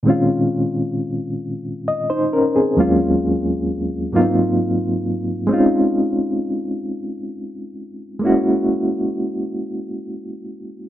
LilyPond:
\new Staff \with { instrumentName = "Reed electric piano" } { \time 6/8 \key bes \minor \tempo 4. = 44 << { r2 ees''16 <ees' c''>16 <des' bes'>16 <c' aes'>16~ | <c' aes'>16 r2 r8. | r2. | r2. | } \\ { <bes, ees aes c' des' f'>2. | <ees, ges aes bes des' f'>4. <aes, ges bes ces' c' ees' f'>4. | <aes c' des' ees' f'>2. | <aes bes des' fes' ges'>2. | } >> }